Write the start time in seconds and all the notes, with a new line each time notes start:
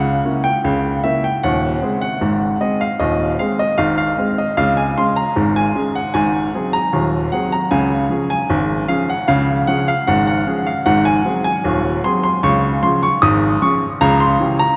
Already playing: C#2 C#3 F#5
0.25 A#3 C#4 E4
0.44 G5
0.64 C#2 C#3
1.04 A#3 C#4 E4 E5
1.24 G5
1.43 D#1 D#2 F#5
1.82 G#3 C4 G#4
2.01 F#5
2.21 G#1 G#2
2.61 G#3 C4 G#4 D#5
2.81 F5
3.00 D#1 D#2 D#5
3.39 G#3 C4 G#4 F5
3.59 D#5
3.78 G#1 G#2 F5
3.98 F5
4.18 G#3 C4 G#4
4.38 D#5
4.57 C#2 C#3 F5
4.77 G#5
4.98 G#3 C#4 G#4 C6
5.16 A#5
5.36 G#1 G#2
5.56 G#5
5.75 G#3 C#4 G#4
5.95 F#5
6.14 G#1 G#2 G#5
6.54 F#3 C4 G#4
6.73 A#5
6.93 D#1 D#2
7.32 F#3 C4 G#4 F#5
7.52 A#5
7.71 C#2 C#3 G#5
8.10 F3 C#4 G#4
8.30 G#5
8.50 G#1 G#2
8.88 F3 C#4 G#4 F5
9.10 F#5
9.28 C#2 C#3 F5
9.67 F3 C#4 G#4 F#5
9.88 F5
10.07 G#1 G#2 F#5
10.27 F#5
10.47 F3 C#4 G#4
10.66 F5
10.86 G#1 G#2 F#5
11.05 G#5
11.25 F#3 C4 G#4
11.44 G#5
11.64 D#1 D#2
12.04 F#3 C4 G#4 C6
12.24 C6
12.43 C#2 C#3 C#6
12.83 F3 C#4 G#4 C6
13.03 C#6
13.22 G#1 G#2 D#6
13.62 F3 C#4 G#4 C#6
14.01 C#2 C#3 A#5
14.20 C6
14.40 E3 C#4 G4
14.59 A#5